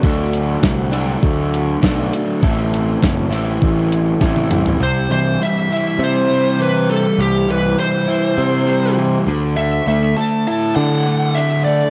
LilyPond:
<<
  \new Staff \with { instrumentName = "Lead electric guitar" } { \time 4/4 \key c \lydian \tempo 4 = 101 r1 | r1 | c''8 c''8 e''8 e''8 c''4 b'8 a'8 | g'8 b'8 c''2 r4 |
e''8 e''8 a''8 a''8 fis''4 e''8 d''8 | }
  \new Staff \with { instrumentName = "Overdriven electric guitar" } { \clef bass \time 4/4 \key c \lydian <d fis a d'>4. <d fis a d'>4. <d fis a d'>4 | <a, e a c' e'>4. <a, e a c' e'>4. <a, e a c' e'>4 | c8 e8 g8 e'8 c'8 g8 e8 g8 | c8 e8 g8 e'8 c'8 g8 e8 d8 |
d8 a8 a8 e'8 d'8 a8 d8 a8 | }
  \new Staff \with { instrumentName = "Picked electric bass" } { \clef bass \time 4/4 \key c \lydian d,4 c,4 d,4 b,,8 r8 | a,,4 fis,,8 a,,8 a,,4 a,,4 | c,8 c,8 r4 c2 | c,8 c,8 r4 c4. d,8~ |
d,8 d,8 r4 d2 | }
  \new DrumStaff \with { instrumentName = "Drums" } \drummode { \time 4/4 bd8 hh8 <bd sn>8 hh8 bd8 hh8 <bd sn>8 hh8 | bd8 hh8 <bd sn>8 hh8 bd8 hh8 <bd sn>16 tommh16 <hh toml>16 tomfh16 | r4 r4 r4 r4 | r4 r4 r4 r4 |
r4 r4 r4 r4 | }
>>